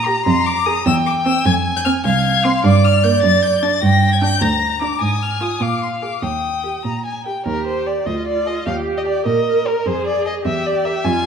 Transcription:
Already playing: cello A#2, violin A#5
0.06 viola G4, violin A#5
0.26 cello F2, violin C6
0.46 violin D6
0.66 viola G#4, violin D#6
0.86 cello E2, violin G5 E6
1.06 violin D6
1.26 viola C4, violin E6
1.46 cello F2, violin G#5 G#6
1.77 violin G6
1.85 viola C4, violin F6
2.05 cello C2, violin F5 G#6
2.45 viola C4, violin C6
2.64 cello G2, violin D5 D6
2.84 violin F6
3.04 viola A#3, violin G6
3.23 cello F#2, violin A6
3.43 violin G6
3.63 viola D4, violin A6
3.83 cello G2, violin G5 A#6
4.13 violin G#6
4.21 viola D4, violin G6
4.41 cello D2, violin A#5 A#6
4.82 viola D4, violin D6
5.01 cello G#2, violin G#5 D#6
5.22 violin F6
5.41 viola F4, violin D#6
5.61 cello A#2, violin F5 D6
5.83 violin C6
6.02 viola G#4, violin D6
6.23 cello D#2, violin G5 D#6
6.64 viola G4
6.85 cello A#2, violin A#5
7.06 violin G#5
7.26 viola G4, violin G5
7.46 cello D#2, viola G4, violin A#4
7.67 violin C5
7.86 violin G4 D5
8.06 cello D2, viola F4, violin D#5
8.27 violin D5
8.46 violin G#4 D#5
8.66 cello D#2, viola G4, violin F5
8.97 violin D#5
9.06 violin G4 D5
9.26 cello A#2, viola A#4, violin D#5
9.65 violin G4 A#4
9.86 cello F2, viola G#4, violin C5
10.07 violin D5
10.25 violin G#4 D#5
10.45 cello E2, viola G4, violin E5
10.66 violin D5
10.85 violin A#4 E5
11.04 cello F2, viola F4, violin G#5

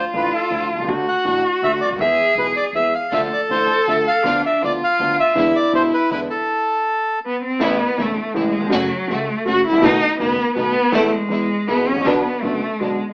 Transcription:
Already playing: cello F4
0.13 upright bass A1, grand piano A1 A2 D3 F3 A3 F4, bandoneon B4
0.35 bandoneon A4
0.50 grand piano D2 D3 F3 A3 F4, upright bass D2
0.75 grand piano B1 C2, upright bass B1
0.80 upright bass C2
0.84 grand piano C#2, upright bass C#2
0.88 grand piano D2 D3 F#3 A3 F#4, upright bass D2, cello F#4
1.08 bandoneon F#5
1.24 upright bass A1, grand piano A1 A2 D3 F#3 A3 F#4
1.62 upright bass D2, grand piano D2 D3 F#3 A3 F#4, bandoneon E5
1.81 bandoneon D5
1.85 upright bass C#2, grand piano C#2
1.90 upright bass D2 D#2, grand piano D2
1.96 grand piano D#2, upright bass E2, cello G#4
2.01 grand piano E2 E3 G#3 B3 G#4, bandoneon E5
2.35 upright bass B1, grand piano B1 B2 E3 G#3 B3 G#4, bandoneon B4
2.56 bandoneon D5
2.73 upright bass E2, grand piano E2 E3 G#3 B3 G#4, bandoneon E5
2.95 bandoneon F5
3.12 upright bass D2, grand piano D2 D3 F3 A3 F4, string section A3 D4 F4, cello A4, bandoneon E5
3.33 bandoneon D5
3.49 upright bass A1, grand piano A1 A2 D3 F3 A3 F4, string section A3 D4 F4, bandoneon C5
3.87 grand piano D2 D3 F3 A3 F4, upright bass D2, string section A3 D4 F4, bandoneon E5
4.07 bandoneon F5
4.24 grand piano D2 D3 F3 B3 F4, upright bass D2, string section B3 D4 F4, cello D4
4.46 bandoneon E5
4.62 grand piano D2 D3 F3 B3 F4, upright bass D2, string section B3 D4 F4, cello F4, bandoneon D5
4.84 bandoneon F5
4.99 grand piano D2 D3 F3 B3 F4, upright bass D2, string section B3 D4 F4
5.20 bandoneon E5
5.35 grand piano E2 D3 E3 G#3 B3 E4, upright bass E2, string section G#3 D4 E4, cello E4
5.56 bandoneon D5
5.72 grand piano B1 B2 D3 G#3 B3 E4, upright bass B1, string section G#3 D4 E4, bandoneon C5
5.94 bandoneon B4
6.10 grand piano E2 D3 E3 G#3 B3 E4, upright bass E2, string section G#3 D4 E4, bandoneon B4
6.30 bandoneon A4
7.25 cello B3
7.44 cello C4
7.59 grand piano A1 A2 C#3 E3 A3 E4, upright bass A1, string section A3 C#4 E4, cello B3
7.97 grand piano E1 E2 C#3 E3 A3 E4, upright bass E1, string section A3 C#4 E4
8.02 cello A3
8.34 grand piano A1 A2 C#3 E3 A3 E4, upright bass A1, string section A3 C#4 E4
8.39 cello G#3
8.58 grand piano D#2 E2
8.66 grand piano F2 F#2 C#3 F#3 A3
8.70 upright bass F#1, string section A3 C#4 F#4, grand piano F#4
8.75 cello F#3
9.07 grand piano C#2 C#3 F#3 A3 F#4, upright bass C#2, string section A3 C#4
9.11 cello A3, string section F#4
9.45 upright bass F#1, grand piano F#2 C#3 F#3 A3 F#4, string section A3 C#4 F#4, cello F#4
9.67 grand piano G#1, upright bass G#1, cello E4
9.73 grand piano A1, upright bass A1
9.77 grand piano A#1 A3, upright bass A#1
9.81 grand piano B1 B2 D#3 B3 F#4, upright bass B1, string section A3 B3 D#4, cello D#4
10.19 upright bass F#1, grand piano F#1 F#2 D#3 A3 B3 F#4, string section A3 B3 D#4, cello B3
10.55 grand piano B1 B2 D#3 A3 B3 F#4, upright bass B1, string section A3 B3 D#4, cello B3
10.92 grand piano E2 E3 A3 B3 A4, upright bass E2, string section A3 B3 E4, cello A3
11.13 cello G#3
11.29 grand piano E2 E3 G#3 B3 G#4, upright bass E2, string section G#3 B3 E4
11.67 grand piano B1 B2 E3 G#3 B3 G#4, upright bass B1, string section G#3 B3 E4, cello B3
11.87 grand piano G#1, cello C#4
11.91 upright bass G#1, grand piano A1
11.96 upright bass A1
12.01 grand piano A#1, upright bass A#1
12.05 upright bass B1, grand piano B1 B2 D3 F#3 B3 F#4, string section F#3 B3 D4, cello B3
12.42 upright bass F#1, grand piano F#1 F#2 D3 F#3 B3 F#4, string section F#3 B3 D4, cello A3
12.80 grand piano B1 B2 D3 F#3 B3 F#4, upright bass B1, string section F#3 B3 D4, cello G#3

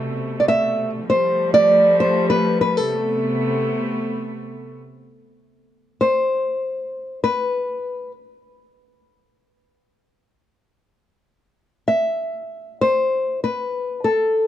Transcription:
Already playing: string section B2 C3 A3, nylon-string guitar E5
0.40 nylon-string guitar D5
0.48 nylon-string guitar E5
1.05 string section F3 G3 A3
1.10 nylon-string guitar C5
1.54 nylon-string guitar D5
2.00 nylon-string guitar C5
2.30 nylon-string guitar B4
2.61 nylon-string guitar B4
2.77 nylon-string guitar A4
2.90 string section C3 A3 B3
6.01 nylon-string guitar C5
7.24 nylon-string guitar B4
11.88 nylon-string guitar E5
12.81 nylon-string guitar C5
13.44 nylon-string guitar B4
14.04 nylon-string guitar A4

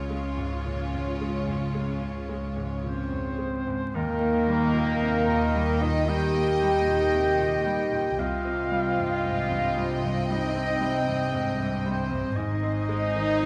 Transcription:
Already playing: grand piano C#2 C#4, double bass section C#2, cello section C#3, viola section C#4 F4, violin section F4 C#5
0.10 grand piano G#3
0.37 grand piano G#2
0.64 grand piano A#2
0.94 grand piano G#2
1.21 grand piano G#3
1.47 grand piano G#2
1.75 grand piano G#3
2.01 grand piano C#4
2.29 grand piano G#3
2.56 grand piano G#2
2.84 grand piano A#2, french horn section C4, oboe C5
3.12 grand piano G#2
3.38 grand piano G#3
3.67 grand piano G#2
3.94 grand piano D#2, double bass section D#2, cello section D#3, viola section A#3, french horn section A#3, oboe A#4, violin section D#5 G5, clarinet D#5, flute G5
4.20 grand piano A#3
4.47 grand piano G3
4.73 grand piano A#2
5.00 grand piano C3
5.27 grand piano A#2
5.55 grand piano G3
5.81 grand piano A#2, french horn section D#4, oboe D#5
6.06 grand piano G3, french horn section G4, clarinet D#5, flute G5, oboe G5
6.34 grand piano A#3
6.62 grand piano G3
6.87 grand piano A#2
7.13 grand piano C3
7.39 grand piano A#2
7.66 grand piano G3
7.92 grand piano A#2
8.18 grand piano C2, double bass section C2, cello section C3, viola section C4, french horn section F4, violin section D#5 G5, clarinet D#5, oboe F5, flute G5
8.45 grand piano C4
8.71 grand piano G3
8.98 grand piano G2
9.25 grand piano G#2
9.51 grand piano G2
9.77 grand piano G3
10.04 grand piano G2
10.27 grand piano G3, oboe D#5, clarinet D#5, flute G5
10.31 french horn section D#4
10.55 grand piano C4
10.81 grand piano G3
11.08 grand piano G2
11.33 grand piano G#2
11.59 grand piano G2
11.83 grand piano G3, french horn section C4, oboe C5
12.10 grand piano G2
12.33 double bass section G#1, cello section G#2, grand piano G#2, viola section C4, french horn section D#4, clarinet C5, flute D#5, violin section D#5 G#5, oboe D#5
12.63 grand piano C4
12.89 grand piano G#3
13.15 grand piano D#3
13.40 grand piano F3

